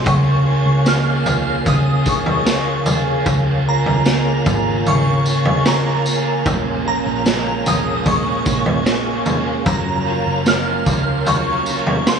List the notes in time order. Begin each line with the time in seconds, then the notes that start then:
Already playing: G#2 C4 G#4
0.05 C#2 C#3 F3 A#3 F4 G#4 A#4 C#5 F5 G#5 C#6, kick, floor tom, tambourine
0.26 F4
0.45 A#3 F4 G#4
0.66 C#2 F4
0.85 C#3 F3 A#3 F4 G#4 F6, snare, tambourine
1.06 G#4
1.25 C#2 A#3 F4 G#4, floor tom, tambourine
1.46 G#4
1.65 C#3 F3 A#3 F4 G#4 D#6, kick, floor tom, tambourine
1.86 F4
2.05 C#2 A#3 F4 G#4, kick, tambourine
2.09 C#6
2.26 F4, floor tom
2.45 C#3 F3 A#3 F4 G#4, snare, tambourine
2.66 G#4
2.85 A#3 F4 G#4, floor tom, tambourine
3.06 G#4
3.25 C#2 C#3 F3 A#3 F4 G#4, kick, floor tom, tambourine
3.46 F4
3.65 A#3 F4 G#4 A#5
3.86 C#2 F4, floor tom
4.05 C#3 F3 A#3 F4 G#4, snare, tambourine
4.26 G#4
4.45 G#1 A#3 F4 G#4, kick, floor tom, tambourine
4.66 G#4
4.84 C#3 F3 A#3 F4 G#4, floor tom, tambourine
4.88 C#6
5.06 F4
5.24 A#3 F4 G#4, tambourine
5.45 F4, floor tom
5.65 C#3 F3 A#3 F4 G#4 A#5, snare, tambourine
5.86 G#4
6.04 A#3 F4 G#4, tambourine
6.26 G#4
6.45 A#1 A#2 F3 G#3 C#4 C#5 G#5, kick, floor tom, tambourine
6.66 C#4
6.85 F3 G#3 C#4 G#4 A#5
7.06 A#1 C#4
7.25 A#2 F3 G#3 C#4, snare, tambourine
7.46 G#4
7.64 A#1 F3 G#3 C#4 D#6, floor tom, tambourine
7.86 G#4
8.04 A#2 F3 G#3 C#4 C#6, kick, floor tom, tambourine
8.26 C#4
8.45 A#1 F3 G#3 C#4 G#4, kick, tambourine
8.66 C#4, floor tom
8.85 A#2 F3 G#3 C#4, snare, tambourine
9.07 G#4
9.25 F3 G#3 C#4, floor tom, tambourine
9.47 G#4
9.65 F#1 F#2 C#3 F3 F#3 A#3 C#4 A#4 C#5 A#5, kick, floor tom, tambourine
9.87 C#4
10.05 F3 A#3 C#4 F4
10.26 F#1 C#4
10.46 F#2 C#3 F3 A#3 C#4 F6, snare, tambourine
10.66 F4
10.85 C#2 F3 A#3 C#4, kick, floor tom, tambourine
11.07 F4
11.26 C#3 F3 F#3 A#3 C#4 C#6, floor tom, tambourine
11.47 C#4
11.65 F3 A#3 C#4 F4, tambourine
11.86 C#4, floor tom
12.06 F#2 C#3 F3 A#3 C#4 C6, snare, tambourine